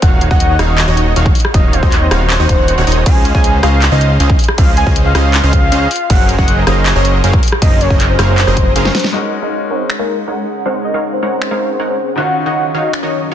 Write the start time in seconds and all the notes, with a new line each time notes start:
0.02 D#1 D#3 D#4 F#4 C#5 F5 F#5, kick, closed hi-hat
0.21 closed hi-hat
0.31 D#1 D#3 D#4 F#4 C#5 D#5 F#5, kick
0.40 closed hi-hat
0.59 D#1 D#3 D#4 F#4 C#5 D#5 F5, cross-stick, closed hi-hat
0.78 clap, closed hi-hat
0.88 D#1 D#3 D#4 F#4 C#5 D#5
0.97 closed hi-hat
1.16 D#1 D#3 D#4 F#4 C#5 F5, closed hi-hat
1.26 kick
1.35 open hi-hat
1.40 closed hi-hat
1.45 cross-stick
1.54 D#1 D#3 D#4 F#4 C#5 D#5 F5, kick, closed hi-hat
1.73 C5, closed hi-hat
1.83 D#1 D#3 D#4 F#4 C#5 D#5, kick
1.92 clap, closed hi-hat
2.02 C5
2.11 D#1 D#3 D#4 F#4 C#5 F5, cross-stick, closed hi-hat
2.30 clap, closed hi-hat
2.40 D#1 D#3 D#4 F#4 C#5 D#5
2.49 D#1 D#3 D#4 F#4 C#5 F#5, kick, closed hi-hat
2.68 closed hi-hat
2.78 D#1 D#3 D#4 F#4 C#5 F#5
2.87 D#1 D#3 D#4 F#4 C#5 D#5, open hi-hat
2.92 closed hi-hat
3.06 C#2 C#4 G#4 C5 D#5 F5 G#5, kick, closed hi-hat, crash
3.25 closed hi-hat
3.35 C#2 C#4 G#4 C5 D#5 F5 G#5, kick
3.44 closed hi-hat
3.63 C#2 C#4 G#4 C5 D#5 F5, cross-stick, closed hi-hat
3.82 clap, closed hi-hat
3.92 C#2 C#4 G#4 C5 D#5 F5
4.01 closed hi-hat
4.20 C#2 C#4 G#4 C5 D#5 F5, closed hi-hat
4.30 kick
4.39 open hi-hat
4.44 closed hi-hat
4.49 cross-stick
4.58 C#2 C#4 G#4 C5 D#5 F5, kick, closed hi-hat, crash
4.77 G#5, closed hi-hat
4.87 C#2 C#4 G#4 C5 D#5 F5, kick
4.96 closed hi-hat
5.06 F5
5.15 C#2 C#4 G#4 C5 D#5 F5, cross-stick, closed hi-hat
5.34 clap, closed hi-hat
5.44 C#2 C#4 G#4 C5 D#5 F5
5.53 kick, closed hi-hat
5.72 C#2 C#4 G#4 C5 D#5 F5, closed hi-hat
5.91 open hi-hat
5.96 closed hi-hat
6.10 F#1 F#3 C#4 G#4 A#4 C5 F5 F#5, kick, closed hi-hat, crash
6.29 closed hi-hat
6.39 F#1 F#3 C#4 A#4 C5 D#5 F#5, kick
6.48 closed hi-hat
6.67 F#1 F#3 C#4 G#4 A#4 C5 D#5 F5, cross-stick, closed hi-hat
6.86 clap, closed hi-hat
6.96 F#1 F#3 C#4 G#4 A#4 C5 C#5 D#5
7.05 closed hi-hat
7.24 F#1 F#3 C#4 G#4 A#4 C5 F5, closed hi-hat
7.33 kick
7.43 open hi-hat
7.48 closed hi-hat
7.52 cross-stick
7.62 F#1 F#3 C#4 G#4 A#4 C5 D#5 F5, kick, closed hi-hat, crash
7.81 C#5, closed hi-hat
7.90 F#1 F#3 C#4 G#4 A#4 C5 D#5, kick
8.00 clap, closed hi-hat
8.09 C5
8.19 F#1 F#3 C#4 G#4 A#4 C5 F5, cross-stick, closed hi-hat
8.38 clap, closed hi-hat
8.47 F#1 F#3 C#4 G#4 A#4 C5 D#5, cross-stick
8.57 kick, closed hi-hat
8.76 F#1 F#3 C#4 G#4 A#4 C5 F5, closed hi-hat
8.85 snare
8.95 snare, open hi-hat
8.99 closed hi-hat
9.04 snare
9.12 G#3 C#4 D#4 F#4 G#4 A#4 C#5 D#5 F#5
9.42 G#3 D#4 A#4 C#5 D#5 F5
9.71 G#3 D#4 A#4 C5 C#5 F#5
9.90 finger snap
9.99 G#3 D#4 A#4 C#5 F5
10.28 G#3 D#4 A#4 C#5 F#5
10.66 G#3 D#4 A#4 C5 C#5 F#5
10.85 D#5
10.94 G#3 D#4 A#4 C#5 F5
11.13 C5
11.23 G#3 D#4 A#4 C#5 F#5
11.42 finger snap
11.51 G#3 D#4 A#4 C#5 F5
11.80 G#3 D#4 A#4 C#5 F#5
12.16 D#3 F#3 D#4 F4 F#4 C#5 D#5 F5 F#5
12.20 C#4
12.46 D#3 D#4 F#4 C#5 D#5 F#5
12.75 D#3 D#4 F#4 C#5 D#5 F5
12.93 finger snap
13.03 D#3 D#4 F#4 C#5 D#5